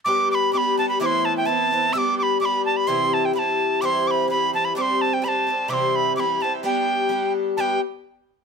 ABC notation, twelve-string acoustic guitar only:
X:1
M:2/4
L:1/8
Q:"Swing" 1/4=128
K:G
V:1 name="Twelve-string acoustic guitar"
[G,B,DG]2 [G,B,DG] [G,B,DG] | [A,,E,B,CE]2 [E,B,CE] [E,B,CE] | [G,B,DG]2 [G,B,DG]2 | [C,E,G,CG]2 [E,G,CG]2 |
[C,E,G,CG]2 [E,G,CG] [E,G,CG] | [D,G,CG]2 [D,G,CG] [D,G,CG] | [C,E,G,CG]2 [E,G,CG] [E,G,CG] | [G,B,DG]2 [G,B,DG]2 |
[G,B,DG] z3 |]